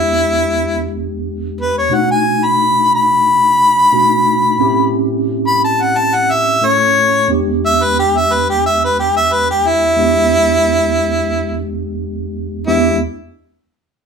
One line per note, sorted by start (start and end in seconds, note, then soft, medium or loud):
0.00 1.86 E2 medium
0.00 1.86 G#3 medium
0.00 1.87 B3 medium
0.00 1.87 D4 medium
0.00 0.88 E4 medium
0.00 1.88 G4 medium
1.61 1.75 B4 medium
1.78 1.96 C#5 medium
1.89 3.88 B2 medium
1.89 3.88 A3 medium
1.89 3.88 D4 medium
1.89 3.89 D#4 medium
1.89 3.89 F#4 medium
1.94 2.09 F#5 medium
2.11 2.46 G#5 medium
2.45 2.92 B5 medium
2.95 4.91 B5 loud
3.92 4.59 B2 medium
3.92 4.60 A3 medium
3.92 4.60 D4 medium
3.92 4.60 D#4 medium
3.92 4.60 F#4 medium
4.59 6.57 A2 medium
4.59 6.57 C4 medium
4.59 6.58 C#4 medium
4.59 6.58 E4 medium
4.59 6.58 G4 medium
5.47 5.61 B5 medium
5.64 5.84 A5 medium
5.82 5.99 F#5 loud
5.98 6.16 A5 medium
6.15 6.34 F#5 medium
6.32 6.67 E5 medium
6.61 7.29 A2 soft
6.61 7.29 A3 soft
6.61 7.29 C#4 soft
6.61 7.29 E4 soft
6.61 7.29 A4 medium
6.66 7.29 C#5 loud
7.28 9.93 E2 medium
7.28 9.94 G#3 medium
7.28 9.94 B3 medium
7.28 9.95 D4 medium
7.28 9.95 G4 medium
7.66 7.85 E5 loud
7.83 7.97 B4 medium
7.99 8.19 G4 medium
8.17 8.34 E5 loud
8.33 8.47 B4 medium
8.50 8.64 G4 loud
8.66 8.81 E5 loud
8.84 8.98 B4 medium
8.99 9.14 G4 medium
9.17 9.34 E5 medium
9.33 9.48 B4 medium
9.51 9.69 G4 medium
9.67 11.64 E4 loud
9.96 12.62 E2 medium
9.96 12.63 G#3 medium
9.96 12.63 B3 medium
9.96 12.63 D4 medium
9.96 12.64 G4 medium
12.67 12.99 E2 medium
12.67 12.99 G#3 medium
12.67 12.99 B3 medium
12.67 12.99 D4 medium
12.67 12.98 E4 medium
12.67 12.99 G4 medium